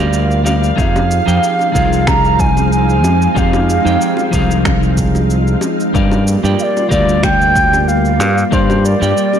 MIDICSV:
0, 0, Header, 1, 6, 480
1, 0, Start_track
1, 0, Tempo, 645161
1, 581, Time_signature, 4, 2, 24, 8
1, 6989, End_track
2, 0, Start_track
2, 0, Title_t, "Flute"
2, 0, Program_c, 0, 73
2, 585, Note_on_c, 0, 77, 100
2, 1542, Note_on_c, 0, 82, 112
2, 1554, Note_off_c, 0, 77, 0
2, 1784, Note_on_c, 0, 80, 98
2, 1795, Note_off_c, 0, 82, 0
2, 2020, Note_off_c, 0, 80, 0
2, 2024, Note_on_c, 0, 80, 101
2, 2516, Note_on_c, 0, 77, 94
2, 2527, Note_off_c, 0, 80, 0
2, 3468, Note_off_c, 0, 77, 0
2, 4908, Note_on_c, 0, 77, 89
2, 4933, Note_on_c, 0, 74, 97
2, 4941, Note_off_c, 0, 77, 0
2, 5128, Note_off_c, 0, 74, 0
2, 5142, Note_on_c, 0, 74, 98
2, 5383, Note_on_c, 0, 79, 118
2, 5394, Note_off_c, 0, 74, 0
2, 5863, Note_on_c, 0, 77, 101
2, 5874, Note_off_c, 0, 79, 0
2, 6345, Note_on_c, 0, 72, 86
2, 6357, Note_off_c, 0, 77, 0
2, 6586, Note_on_c, 0, 74, 95
2, 6597, Note_off_c, 0, 72, 0
2, 6989, Note_off_c, 0, 74, 0
2, 6989, End_track
3, 0, Start_track
3, 0, Title_t, "Clean electric guitar"
3, 0, Program_c, 1, 27
3, 0, Note_on_c, 1, 55, 96
3, 0, Note_on_c, 1, 67, 88
3, 0, Note_on_c, 1, 70, 86
3, 0, Note_on_c, 1, 74, 78
3, 0, Note_on_c, 1, 77, 88
3, 309, Note_off_c, 1, 55, 0
3, 311, Note_off_c, 1, 67, 0
3, 312, Note_off_c, 1, 70, 0
3, 314, Note_off_c, 1, 74, 0
3, 314, Note_off_c, 1, 77, 0
3, 324, Note_on_c, 1, 55, 72
3, 331, Note_on_c, 1, 67, 72
3, 335, Note_on_c, 1, 70, 59
3, 338, Note_on_c, 1, 74, 60
3, 341, Note_on_c, 1, 77, 72
3, 546, Note_off_c, 1, 55, 0
3, 549, Note_off_c, 1, 67, 0
3, 550, Note_off_c, 1, 70, 0
3, 553, Note_off_c, 1, 74, 0
3, 553, Note_off_c, 1, 77, 0
3, 562, Note_on_c, 1, 53, 80
3, 569, Note_on_c, 1, 63, 75
3, 574, Note_on_c, 1, 68, 76
3, 576, Note_on_c, 1, 67, 64
3, 577, Note_on_c, 1, 77, 90
3, 909, Note_off_c, 1, 53, 0
3, 914, Note_off_c, 1, 63, 0
3, 915, Note_off_c, 1, 67, 0
3, 915, Note_off_c, 1, 68, 0
3, 917, Note_off_c, 1, 77, 0
3, 935, Note_on_c, 1, 53, 79
3, 938, Note_on_c, 1, 63, 78
3, 943, Note_on_c, 1, 67, 62
3, 946, Note_on_c, 1, 68, 71
3, 951, Note_on_c, 1, 79, 89
3, 1267, Note_off_c, 1, 53, 0
3, 1269, Note_off_c, 1, 63, 0
3, 1270, Note_off_c, 1, 67, 0
3, 1273, Note_off_c, 1, 68, 0
3, 1275, Note_off_c, 1, 79, 0
3, 1280, Note_on_c, 1, 53, 90
3, 1289, Note_on_c, 1, 63, 82
3, 1294, Note_on_c, 1, 65, 81
3, 1303, Note_on_c, 1, 68, 83
3, 1308, Note_on_c, 1, 77, 97
3, 2464, Note_off_c, 1, 53, 0
3, 2468, Note_off_c, 1, 63, 0
3, 2471, Note_off_c, 1, 65, 0
3, 2476, Note_off_c, 1, 68, 0
3, 2478, Note_off_c, 1, 77, 0
3, 2486, Note_on_c, 1, 53, 84
3, 2490, Note_on_c, 1, 63, 74
3, 2493, Note_on_c, 1, 67, 83
3, 2496, Note_on_c, 1, 68, 78
3, 2503, Note_on_c, 1, 77, 90
3, 2831, Note_off_c, 1, 53, 0
3, 2833, Note_off_c, 1, 63, 0
3, 2835, Note_off_c, 1, 67, 0
3, 2837, Note_off_c, 1, 68, 0
3, 2840, Note_off_c, 1, 77, 0
3, 2860, Note_on_c, 1, 53, 79
3, 2864, Note_on_c, 1, 63, 77
3, 2867, Note_on_c, 1, 67, 72
3, 2870, Note_on_c, 1, 68, 71
3, 2875, Note_on_c, 1, 79, 84
3, 3190, Note_off_c, 1, 53, 0
3, 3191, Note_off_c, 1, 63, 0
3, 3193, Note_off_c, 1, 67, 0
3, 3195, Note_off_c, 1, 68, 0
3, 3196, Note_off_c, 1, 79, 0
3, 3206, Note_on_c, 1, 53, 92
3, 3213, Note_on_c, 1, 63, 84
3, 3219, Note_on_c, 1, 67, 70
3, 3224, Note_on_c, 1, 68, 81
3, 3234, Note_on_c, 1, 77, 107
3, 4387, Note_off_c, 1, 53, 0
3, 4391, Note_off_c, 1, 63, 0
3, 4392, Note_off_c, 1, 67, 0
3, 4396, Note_off_c, 1, 68, 0
3, 4401, Note_off_c, 1, 77, 0
3, 4416, Note_on_c, 1, 55, 93
3, 4420, Note_on_c, 1, 67, 78
3, 4425, Note_on_c, 1, 70, 69
3, 4427, Note_on_c, 1, 74, 78
3, 4432, Note_on_c, 1, 77, 97
3, 4756, Note_off_c, 1, 55, 0
3, 4759, Note_off_c, 1, 67, 0
3, 4760, Note_off_c, 1, 70, 0
3, 4762, Note_off_c, 1, 74, 0
3, 4764, Note_off_c, 1, 77, 0
3, 4785, Note_on_c, 1, 55, 83
3, 4788, Note_on_c, 1, 67, 79
3, 4794, Note_on_c, 1, 70, 65
3, 4798, Note_on_c, 1, 74, 77
3, 4801, Note_on_c, 1, 79, 70
3, 5112, Note_off_c, 1, 55, 0
3, 5114, Note_off_c, 1, 67, 0
3, 5115, Note_off_c, 1, 70, 0
3, 5119, Note_off_c, 1, 74, 0
3, 5119, Note_off_c, 1, 79, 0
3, 5123, Note_on_c, 1, 55, 91
3, 5128, Note_on_c, 1, 67, 84
3, 5136, Note_on_c, 1, 70, 86
3, 5142, Note_on_c, 1, 74, 83
3, 5148, Note_on_c, 1, 77, 108
3, 6305, Note_off_c, 1, 55, 0
3, 6308, Note_off_c, 1, 67, 0
3, 6312, Note_off_c, 1, 70, 0
3, 6315, Note_off_c, 1, 74, 0
3, 6318, Note_off_c, 1, 77, 0
3, 6328, Note_on_c, 1, 55, 88
3, 6332, Note_on_c, 1, 67, 81
3, 6337, Note_on_c, 1, 70, 74
3, 6340, Note_on_c, 1, 74, 81
3, 6344, Note_on_c, 1, 77, 90
3, 6672, Note_off_c, 1, 55, 0
3, 6675, Note_off_c, 1, 67, 0
3, 6676, Note_off_c, 1, 70, 0
3, 6678, Note_off_c, 1, 74, 0
3, 6680, Note_off_c, 1, 77, 0
3, 6695, Note_on_c, 1, 55, 80
3, 6701, Note_on_c, 1, 67, 77
3, 6705, Note_on_c, 1, 70, 67
3, 6709, Note_on_c, 1, 74, 76
3, 6715, Note_on_c, 1, 79, 88
3, 6989, Note_off_c, 1, 55, 0
3, 6989, Note_off_c, 1, 67, 0
3, 6989, Note_off_c, 1, 70, 0
3, 6989, Note_off_c, 1, 74, 0
3, 6989, Note_off_c, 1, 79, 0
3, 6989, End_track
4, 0, Start_track
4, 0, Title_t, "String machine"
4, 0, Program_c, 2, 50
4, 0, Note_on_c, 2, 58, 77
4, 0, Note_on_c, 2, 65, 69
4, 0, Note_on_c, 2, 77, 88
4, 548, Note_off_c, 2, 58, 0
4, 550, Note_off_c, 2, 65, 0
4, 585, Note_on_c, 2, 60, 74
4, 585, Note_on_c, 2, 63, 71
4, 586, Note_on_c, 2, 53, 79
4, 586, Note_on_c, 2, 56, 87
4, 4387, Note_off_c, 2, 77, 0
4, 4393, Note_off_c, 2, 63, 0
4, 4394, Note_off_c, 2, 53, 0
4, 4394, Note_off_c, 2, 56, 0
4, 4394, Note_off_c, 2, 60, 0
4, 4423, Note_on_c, 2, 58, 76
4, 4424, Note_on_c, 2, 55, 84
4, 4424, Note_on_c, 2, 65, 90
4, 6323, Note_off_c, 2, 65, 0
4, 6346, Note_on_c, 2, 67, 88
4, 6989, Note_off_c, 2, 55, 0
4, 6989, Note_off_c, 2, 58, 0
4, 6989, Note_off_c, 2, 67, 0
4, 6989, End_track
5, 0, Start_track
5, 0, Title_t, "Fingered electric bass"
5, 0, Program_c, 3, 33
5, 0, Note_on_c, 3, 38, 94
5, 526, Note_off_c, 3, 38, 0
5, 582, Note_on_c, 3, 41, 91
5, 885, Note_off_c, 3, 41, 0
5, 948, Note_on_c, 3, 41, 90
5, 1025, Note_off_c, 3, 41, 0
5, 1303, Note_on_c, 3, 36, 88
5, 2258, Note_off_c, 3, 36, 0
5, 2258, Note_on_c, 3, 41, 93
5, 2430, Note_off_c, 3, 41, 0
5, 2502, Note_on_c, 3, 41, 93
5, 2805, Note_off_c, 3, 41, 0
5, 2868, Note_on_c, 3, 41, 101
5, 2945, Note_off_c, 3, 41, 0
5, 3223, Note_on_c, 3, 36, 87
5, 4126, Note_off_c, 3, 36, 0
5, 4424, Note_on_c, 3, 43, 99
5, 4727, Note_off_c, 3, 43, 0
5, 4790, Note_on_c, 3, 43, 103
5, 4866, Note_off_c, 3, 43, 0
5, 5144, Note_on_c, 3, 38, 93
5, 6098, Note_off_c, 3, 38, 0
5, 6098, Note_on_c, 3, 43, 91
5, 6269, Note_off_c, 3, 43, 0
5, 6341, Note_on_c, 3, 43, 94
5, 6645, Note_off_c, 3, 43, 0
5, 6709, Note_on_c, 3, 43, 96
5, 6786, Note_off_c, 3, 43, 0
5, 6989, End_track
6, 0, Start_track
6, 0, Title_t, "Drums"
6, 99, Note_on_c, 9, 82, 41
6, 173, Note_off_c, 9, 82, 0
6, 231, Note_on_c, 9, 82, 20
6, 305, Note_off_c, 9, 82, 0
6, 344, Note_on_c, 9, 82, 72
6, 347, Note_on_c, 9, 60, 84
6, 419, Note_off_c, 9, 82, 0
6, 421, Note_off_c, 9, 60, 0
6, 473, Note_on_c, 9, 82, 32
6, 548, Note_off_c, 9, 82, 0
6, 582, Note_on_c, 9, 36, 108
6, 587, Note_on_c, 9, 82, 40
6, 656, Note_off_c, 9, 36, 0
6, 661, Note_off_c, 9, 82, 0
6, 713, Note_on_c, 9, 60, 90
6, 717, Note_on_c, 9, 82, 22
6, 787, Note_off_c, 9, 60, 0
6, 791, Note_off_c, 9, 82, 0
6, 826, Note_on_c, 9, 82, 70
6, 901, Note_off_c, 9, 82, 0
6, 955, Note_on_c, 9, 82, 34
6, 1030, Note_off_c, 9, 82, 0
6, 1068, Note_on_c, 9, 82, 41
6, 1142, Note_off_c, 9, 82, 0
6, 1185, Note_on_c, 9, 60, 55
6, 1197, Note_on_c, 9, 82, 19
6, 1259, Note_off_c, 9, 60, 0
6, 1271, Note_off_c, 9, 82, 0
6, 1303, Note_on_c, 9, 36, 60
6, 1306, Note_on_c, 9, 82, 77
6, 1377, Note_off_c, 9, 36, 0
6, 1380, Note_off_c, 9, 82, 0
6, 1435, Note_on_c, 9, 82, 32
6, 1510, Note_off_c, 9, 82, 0
6, 1541, Note_on_c, 9, 26, 68
6, 1542, Note_on_c, 9, 36, 117
6, 1544, Note_on_c, 9, 60, 79
6, 1546, Note_on_c, 9, 82, 42
6, 1616, Note_off_c, 9, 26, 0
6, 1617, Note_off_c, 9, 36, 0
6, 1618, Note_off_c, 9, 60, 0
6, 1620, Note_off_c, 9, 82, 0
6, 1671, Note_on_c, 9, 82, 20
6, 1746, Note_off_c, 9, 82, 0
6, 1782, Note_on_c, 9, 36, 95
6, 1782, Note_on_c, 9, 82, 68
6, 1857, Note_off_c, 9, 36, 0
6, 1857, Note_off_c, 9, 82, 0
6, 1912, Note_on_c, 9, 60, 60
6, 1915, Note_on_c, 9, 82, 31
6, 1986, Note_off_c, 9, 60, 0
6, 1989, Note_off_c, 9, 82, 0
6, 2028, Note_on_c, 9, 82, 43
6, 2102, Note_off_c, 9, 82, 0
6, 2154, Note_on_c, 9, 82, 19
6, 2229, Note_off_c, 9, 82, 0
6, 2263, Note_on_c, 9, 60, 83
6, 2264, Note_on_c, 9, 82, 74
6, 2337, Note_off_c, 9, 60, 0
6, 2339, Note_off_c, 9, 82, 0
6, 2395, Note_on_c, 9, 82, 33
6, 2469, Note_off_c, 9, 82, 0
6, 2503, Note_on_c, 9, 36, 112
6, 2508, Note_on_c, 9, 82, 40
6, 2577, Note_off_c, 9, 36, 0
6, 2582, Note_off_c, 9, 82, 0
6, 2629, Note_on_c, 9, 60, 84
6, 2635, Note_on_c, 9, 82, 21
6, 2703, Note_off_c, 9, 60, 0
6, 2710, Note_off_c, 9, 82, 0
6, 2750, Note_on_c, 9, 82, 70
6, 2825, Note_off_c, 9, 82, 0
6, 2877, Note_on_c, 9, 82, 31
6, 2951, Note_off_c, 9, 82, 0
6, 2987, Note_on_c, 9, 82, 42
6, 3061, Note_off_c, 9, 82, 0
6, 3101, Note_on_c, 9, 60, 62
6, 3115, Note_on_c, 9, 82, 20
6, 3175, Note_off_c, 9, 60, 0
6, 3190, Note_off_c, 9, 82, 0
6, 3222, Note_on_c, 9, 82, 72
6, 3223, Note_on_c, 9, 36, 56
6, 3296, Note_off_c, 9, 82, 0
6, 3298, Note_off_c, 9, 36, 0
6, 3356, Note_on_c, 9, 82, 31
6, 3430, Note_off_c, 9, 82, 0
6, 3461, Note_on_c, 9, 26, 69
6, 3461, Note_on_c, 9, 60, 82
6, 3463, Note_on_c, 9, 36, 114
6, 3466, Note_on_c, 9, 82, 38
6, 3535, Note_off_c, 9, 60, 0
6, 3536, Note_off_c, 9, 26, 0
6, 3538, Note_off_c, 9, 36, 0
6, 3540, Note_off_c, 9, 82, 0
6, 3593, Note_on_c, 9, 82, 20
6, 3668, Note_off_c, 9, 82, 0
6, 3702, Note_on_c, 9, 82, 69
6, 3704, Note_on_c, 9, 36, 53
6, 3776, Note_off_c, 9, 82, 0
6, 3778, Note_off_c, 9, 36, 0
6, 3831, Note_on_c, 9, 60, 56
6, 3834, Note_on_c, 9, 82, 29
6, 3905, Note_off_c, 9, 60, 0
6, 3908, Note_off_c, 9, 82, 0
6, 3946, Note_on_c, 9, 82, 38
6, 4021, Note_off_c, 9, 82, 0
6, 4073, Note_on_c, 9, 82, 20
6, 4148, Note_off_c, 9, 82, 0
6, 4175, Note_on_c, 9, 60, 85
6, 4184, Note_on_c, 9, 82, 67
6, 4249, Note_off_c, 9, 60, 0
6, 4258, Note_off_c, 9, 82, 0
6, 4317, Note_on_c, 9, 82, 30
6, 4391, Note_off_c, 9, 82, 0
6, 4424, Note_on_c, 9, 36, 114
6, 4428, Note_on_c, 9, 82, 40
6, 4499, Note_off_c, 9, 36, 0
6, 4502, Note_off_c, 9, 82, 0
6, 4549, Note_on_c, 9, 60, 76
6, 4557, Note_on_c, 9, 82, 21
6, 4624, Note_off_c, 9, 60, 0
6, 4632, Note_off_c, 9, 82, 0
6, 4668, Note_on_c, 9, 82, 74
6, 4742, Note_off_c, 9, 82, 0
6, 4798, Note_on_c, 9, 82, 31
6, 4872, Note_off_c, 9, 82, 0
6, 4905, Note_on_c, 9, 82, 41
6, 4980, Note_off_c, 9, 82, 0
6, 5036, Note_on_c, 9, 60, 59
6, 5036, Note_on_c, 9, 82, 20
6, 5110, Note_off_c, 9, 82, 0
6, 5111, Note_off_c, 9, 60, 0
6, 5143, Note_on_c, 9, 36, 56
6, 5146, Note_on_c, 9, 82, 68
6, 5217, Note_off_c, 9, 36, 0
6, 5221, Note_off_c, 9, 82, 0
6, 5274, Note_on_c, 9, 82, 30
6, 5349, Note_off_c, 9, 82, 0
6, 5379, Note_on_c, 9, 60, 73
6, 5382, Note_on_c, 9, 26, 75
6, 5383, Note_on_c, 9, 36, 112
6, 5387, Note_on_c, 9, 82, 42
6, 5453, Note_off_c, 9, 60, 0
6, 5457, Note_off_c, 9, 26, 0
6, 5457, Note_off_c, 9, 36, 0
6, 5461, Note_off_c, 9, 82, 0
6, 5516, Note_on_c, 9, 82, 20
6, 5591, Note_off_c, 9, 82, 0
6, 5622, Note_on_c, 9, 36, 91
6, 5623, Note_on_c, 9, 82, 63
6, 5696, Note_off_c, 9, 36, 0
6, 5698, Note_off_c, 9, 82, 0
6, 5754, Note_on_c, 9, 60, 67
6, 5756, Note_on_c, 9, 82, 30
6, 5828, Note_off_c, 9, 60, 0
6, 5831, Note_off_c, 9, 82, 0
6, 5867, Note_on_c, 9, 82, 39
6, 5941, Note_off_c, 9, 82, 0
6, 5991, Note_on_c, 9, 82, 20
6, 6065, Note_off_c, 9, 82, 0
6, 6105, Note_on_c, 9, 82, 72
6, 6106, Note_on_c, 9, 60, 69
6, 6179, Note_off_c, 9, 82, 0
6, 6180, Note_off_c, 9, 60, 0
6, 6233, Note_on_c, 9, 82, 32
6, 6308, Note_off_c, 9, 82, 0
6, 6340, Note_on_c, 9, 36, 119
6, 6344, Note_on_c, 9, 82, 42
6, 6415, Note_off_c, 9, 36, 0
6, 6419, Note_off_c, 9, 82, 0
6, 6470, Note_on_c, 9, 60, 81
6, 6475, Note_on_c, 9, 82, 22
6, 6545, Note_off_c, 9, 60, 0
6, 6549, Note_off_c, 9, 82, 0
6, 6586, Note_on_c, 9, 82, 72
6, 6661, Note_off_c, 9, 82, 0
6, 6715, Note_on_c, 9, 82, 32
6, 6790, Note_off_c, 9, 82, 0
6, 6825, Note_on_c, 9, 82, 43
6, 6899, Note_off_c, 9, 82, 0
6, 6944, Note_on_c, 9, 60, 58
6, 6951, Note_on_c, 9, 82, 19
6, 6989, Note_off_c, 9, 60, 0
6, 6989, Note_off_c, 9, 82, 0
6, 6989, End_track
0, 0, End_of_file